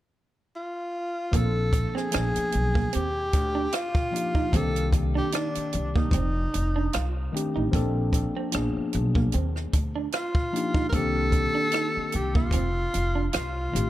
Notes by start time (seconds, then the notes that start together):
0.56 F4
1.31 A#1 F3 A#3 C4 D4, kick, closed hi-hat
1.35 A4
1.73 muted clean electric guitar stroke, kick, closed hi-hat
1.89 A4
1.95 C4 G#4, cross-stick
2.11 F3 A#3 B3 D4 G#4, cross-stick, closed hi-hat
2.15 A#1
2.36 muted upright bass stroke, closed hi-hat
2.52 B1, muted clean electric guitar stroke, closed hi-hat
2.75 A#3, kick
2.93 D#2 C4 G4, closed hi-hat
3.33 D2, muted clean electric guitar stroke, kick, closed hi-hat
3.55 D4
3.73 F4, cross-stick, closed hi-hat
3.95 kick
4.11 F3 A#3 D4 D#4, muted clean electric guitar stroke
4.15 G4, closed hi-hat
4.35 D#4, kick
4.51 C2 D#3 A#3 C4 D4, kick, closed hi-hat
4.56 G4 A4
4.76 closed hi-hat
4.93 muted clean electric guitar stroke, kick, closed hi-hat
5.15 D4 G4
5.32 D4 D#4, cross-stick, closed hi-hat
5.55 muted upright bass stroke, closed hi-hat
5.73 C2, muted clean electric guitar stroke, closed hi-hat
5.96 A#3 D#4, kick
6.11 F1 C4, kick, closed hi-hat
6.54 F1, muted clean electric guitar stroke, closed hi-hat
6.76 D4
6.93 C2 F4, cross-stick, closed hi-hat
7.32 D#3 A3 C4 D4 G4, muted clean electric guitar stroke
7.37 closed hi-hat
7.56 A1 D#4
7.71 A#1 F3 A#3 C4 D4, kick, closed hi-hat
7.75 A4
8.13 muted clean electric guitar stroke, kick, closed hi-hat
8.37 C4
8.51 A#1 F3 A#3 B3 D4, cross-stick, closed hi-hat
8.56 D4 G#4
8.77 muted upright bass stroke
8.93 B1, muted clean electric guitar stroke, closed hi-hat
9.15 A#3, kick
9.32 D#2 C4, closed hi-hat
9.56 cross-stick
9.73 D2, muted clean electric guitar stroke, kick, closed hi-hat
9.96 D4
10.12 F4, cross-stick, closed hi-hat
10.35 kick
10.52 F3 A#3 D4 D#4 G4, muted clean electric guitar stroke, closed hi-hat
10.74 D#4, kick
10.89 D3 A#3 C4 A#4, kick, closed hi-hat
10.94 C2 C4 D4 G4 A4
10.99 D#3
11.32 muted clean electric guitar stroke, kick, closed hi-hat
11.55 D4
11.72 D#4, cross-stick, closed hi-hat
11.97 muted upright bass stroke
12.12 C2 G4, muted clean electric guitar stroke, closed hi-hat
12.35 A#3 F4, kick
12.51 F1 C4, kick, closed hi-hat
12.94 F1, muted clean electric guitar stroke, closed hi-hat
13.15 D4
13.33 C2 F4, cross-stick, closed hi-hat
13.72 A1 D#3 A3 C4 D4, muted clean electric guitar stroke, cross-stick
13.76 G4, closed hi-hat